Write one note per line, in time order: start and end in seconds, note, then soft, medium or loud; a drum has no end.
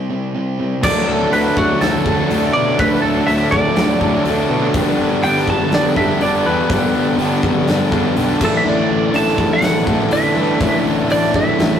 0.00 0.83 G3 medium
0.00 0.32 E4 medium
0.00 0.34 C5 medium
0.09 0.32 C3 medium
0.09 0.32 G3 medium
0.09 0.57 C4 medium
0.34 0.57 C3 medium
0.34 0.57 G3 medium
0.34 0.83 E4 medium
0.58 0.81 C3 medium
0.58 0.81 G3 medium
0.58 0.83 C4 medium
0.82 0.99 D2 loud
0.82 4.70 D3 medium
0.82 1.31 D3 medium
0.82 1.10 F#3 medium
0.82 1.09 A3 loud
0.82 8.36 D4 medium
0.82 11.80 A4 medium
0.82 1.09 D5 medium
0.82 4.71 F#5 medium
0.82 4.70 A5 medium
0.82 kick loud
0.82 crash loud
0.87 1.07 D4 loud
1.08 1.24 D2 medium
1.08 1.32 F#3 medium
1.08 1.33 A3 medium
1.08 1.34 D4 medium
1.08 1.31 A4 medium
1.31 1.48 D2 medium
1.31 2.28 D3 medium
1.31 2.07 F#3 loud
1.31 2.07 A3 loud
1.31 2.05 D4 loud
1.31 1.58 B4 medium
1.31 open hi-hat medium
1.57 1.73 D2 medium
1.57 1.80 F#4 loud
1.57 kick medium
1.81 1.97 D2 loud
1.81 2.28 D3 medium
1.81 2.07 F#3 loud
1.81 2.06 A3 medium
1.81 2.04 D4 loud
1.81 2.57 A4 loud
1.81 snare loud
1.81 open hi-hat medium
2.05 2.22 D2 medium
2.05 2.29 F#3 medium
2.05 2.31 A3 medium
2.05 2.32 D4 medium
2.05 kick medium
2.29 2.47 D2 loud
2.29 2.77 D3 medium
2.29 2.56 F#3 medium
2.29 2.55 A3 medium
2.29 2.53 D4 medium
2.29 open hi-hat medium
2.53 2.71 B2 medium
2.53 2.81 A3 medium
2.53 2.81 D4 medium
2.53 2.79 D5 loud
2.58 2.79 F#3 medium
2.78 2.95 D2 loud
2.78 3.26 D3 medium
2.78 3.06 F#3 medium
2.78 3.05 A3 loud
2.78 3.03 D4 loud
2.78 3.02 B4 loud
2.78 kick loud
2.78 open hi-hat medium
3.02 3.19 D2 medium
3.02 3.29 A3 medium
3.02 3.30 D4 medium
3.02 3.28 A4 loud
3.07 3.28 F#3 medium
3.27 3.44 D2 loud
3.27 4.24 D3 medium
3.27 4.03 F#3 loud
3.27 4.02 A3 loud
3.27 3.51 E5 loud
3.27 open hi-hat medium
3.31 4.00 D4 loud
3.51 3.68 D2 medium
3.51 4.70 D5 loud
3.51 kick loud
3.76 3.93 D2 medium
3.76 4.24 D3 loud
3.76 4.03 F#3 loud
3.76 4.02 A3 loud
3.76 4.00 D4 loud
3.76 snare loud
3.76 open hi-hat medium
4.01 4.17 D2 medium
4.01 4.25 F#3 medium
4.01 4.27 A3 medium
4.01 4.28 D4 medium
4.01 kick medium
4.25 4.42 D2 medium
4.25 4.73 D3 medium
4.25 4.51 F#3 medium
4.25 4.51 A3 medium
4.25 4.49 D4 medium
4.25 open hi-hat medium
4.49 4.66 B2 medium
4.49 4.74 F#3 medium
4.49 4.76 A3 medium
4.49 4.76 D4 medium
4.73 4.90 G1 medium
4.73 5.22 G2 medium
4.73 5.22 D3 medium
4.73 8.37 G3 medium
4.73 5.01 G3 loud
4.73 5.00 B3 loud
4.73 4.98 D4 medium
4.73 8.36 B4 medium
4.73 8.37 G5 medium
4.73 kick loud
4.73 open hi-hat medium
4.99 5.15 G1 loud
4.99 5.24 G3 medium
4.99 5.25 B3 medium
4.99 5.26 D4 medium
5.23 5.39 G1 medium
5.23 6.21 G2 loud
5.23 6.19 D3 loud
5.23 5.98 G3 loud
5.23 5.96 B3 loud
5.23 5.95 D4 loud
5.23 5.49 G5 loud
5.23 open hi-hat medium
5.36 snare soft
5.47 5.63 G1 medium
5.47 5.74 A5 loud
5.47 kick medium
5.71 5.88 G1 medium
5.71 6.21 G2 medium
5.71 6.18 D3 loud
5.71 5.98 G3 medium
5.71 5.96 B3 loud
5.71 5.96 D4 loud
5.71 5.97 D5 loud
5.71 snare loud
5.71 open hi-hat medium
5.96 6.13 G1 medium
5.96 6.21 G3 medium
5.96 6.22 B3 medium
5.96 6.24 D4 medium
5.96 6.20 E5 medium
5.96 kick medium
6.20 6.36 G1 medium
6.20 6.68 D3 medium
6.20 6.47 G3 medium
6.20 6.45 B3 medium
6.20 6.44 D4 medium
6.20 6.47 D5 loud
6.20 open hi-hat medium
6.45 6.61 E2 medium
6.45 6.69 G3 medium
6.45 6.70 B3 medium
6.45 6.72 D4 medium
6.45 7.15 B4 medium
6.69 6.86 G1 medium
6.69 7.16 G2 loud
6.69 7.17 D3 medium
6.69 6.95 G3 medium
6.69 6.94 B3 loud
6.69 6.93 D4 loud
6.69 kick loud
6.69 open hi-hat medium
6.93 7.10 G1 loud
6.93 7.18 G3 medium
6.93 7.19 B3 medium
6.93 7.20 D4 medium
7.18 7.34 G1 loud
7.18 8.16 G2 medium
7.18 8.15 D3 loud
7.18 7.93 G3 loud
7.18 7.92 B3 loud
7.18 7.91 D4 loud
7.18 open hi-hat medium
7.43 7.59 G1 medium
7.43 kick medium
7.66 7.84 G1 loud
7.66 8.16 G2 loud
7.66 8.14 D3 loud
7.66 7.93 G3 medium
7.66 7.92 B3 medium
7.66 7.91 D4 loud
7.66 snare loud
7.66 open hi-hat medium
7.91 8.08 G1 medium
7.91 8.16 G3 medium
7.91 8.17 B3 medium
7.91 8.18 D4 medium
7.91 kick medium
8.16 8.32 B1 loud
8.16 8.39 D3 medium
8.16 8.40 G3 medium
8.16 8.40 B3 medium
8.16 8.41 D4 medium
8.16 open hi-hat medium
8.40 8.57 A1 medium
8.40 8.65 D3 medium
8.40 8.67 E3 medium
8.40 8.67 A3 medium
8.40 8.68 D4 loud
8.40 11.80 E4 medium
8.40 11.80 D5 medium
8.40 kick loud
8.40 crash loud
8.44 8.65 A2 medium
8.44 8.55 A4 medium
8.57 8.67 E5 loud
8.65 8.82 A1 medium
8.65 9.14 A2 loud
8.65 9.14 D3 medium
8.65 8.92 E3 loud
8.65 8.91 A3 loud
8.65 8.89 D4 medium
8.65 9.17 D5 loud
8.90 9.06 A1 medium
8.90 9.15 E3 medium
8.90 9.16 A3 medium
8.90 9.17 D4 medium
9.14 9.30 A1 loud
9.14 10.12 A2 loud
9.14 10.10 D3 medium
9.14 9.90 E3 loud
9.14 9.89 A3 loud
9.14 9.87 D4 loud
9.14 9.53 A5 loud
9.14 open hi-hat medium
9.27 snare soft
9.38 9.54 A1 medium
9.38 kick medium
9.53 10.15 F#5 loud
9.60 9.79 A1 medium
9.60 10.11 A2 medium
9.60 10.09 D3 loud
9.60 9.88 E3 medium
9.60 9.87 A3 medium
9.60 9.85 D4 medium
9.60 snare loud
9.60 open hi-hat medium
9.87 10.03 A1 loud
9.87 10.13 A3 medium
9.87 10.14 D4 medium
9.87 kick medium
9.91 10.11 E3 medium
10.11 10.28 A1 loud
10.11 10.60 D3 medium
10.11 10.38 E3 loud
10.11 10.37 A3 medium
10.11 10.35 D4 loud
10.11 10.82 E5 loud
10.11 open hi-hat medium
10.35 10.52 G2 medium
10.35 10.61 E3 medium
10.35 10.63 A3 medium
10.35 10.63 D4 medium
10.60 10.76 A1 loud
10.60 11.08 A2 medium
10.60 11.09 D3 medium
10.60 10.87 E3 loud
10.60 10.86 A3 loud
10.60 10.84 D4 loud
10.60 kick loud
10.60 open hi-hat medium
10.84 11.01 A1 medium
10.84 11.09 E3 medium
10.84 11.11 A3 medium
10.84 11.12 D4 medium
11.09 11.25 A1 medium
11.09 11.80 A2 medium
11.09 11.80 D3 loud
11.09 11.80 E3 loud
11.09 11.80 A3 loud
11.09 11.80 D4 loud
11.09 11.33 D5 medium
11.09 open hi-hat medium
11.23 snare soft
11.34 11.50 A1 medium
11.34 11.80 E5 loud
11.34 kick medium
11.57 11.75 A1 loud
11.57 11.80 A2 medium
11.57 11.80 D3 medium
11.57 11.80 E3 loud
11.57 11.80 A3 loud
11.57 11.80 D4 loud
11.57 snare loud
11.57 open hi-hat medium